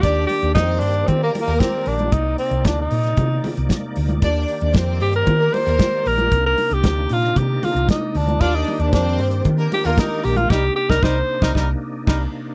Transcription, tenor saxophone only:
\new Staff \with { instrumentName = "Tenor saxophone" } { \time 4/4 \key ees \lydian \tempo 4 = 115 g'8 g'8 ees'8 d'8 \tuplet 3/2 { c'8 bes8 bes8 } c'8 d'8 | ees'8 c'8 \tuplet 3/2 { d'8 ees'4~ } ees'8. r4 r16 | r4. g'16 bes'8. c''4 bes'8~ | bes'16 bes'8 g'8. f'8 g'8 f'8 ees'8 d'8 |
f'16 ees'8 d'16 d'8 r4 g'16 f'16 ees'8 g'16 f'16 | g'8 g'16 bes'16 c''4 r2 | }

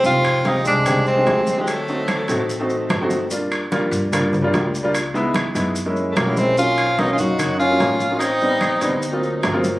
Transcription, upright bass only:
\new Staff \with { instrumentName = "Upright bass" } { \clef bass \time 4/4 \key f \dorian \tempo 4 = 147 f,,4. c,4. d,4~ | d,4. a,,4. g,,4~ | g,,4. g,4. des,4~ | des,4. ges,4. ces,4~ |
ces,4. fis,4. a,,4~ | a,,4. d,4. g,,4 | }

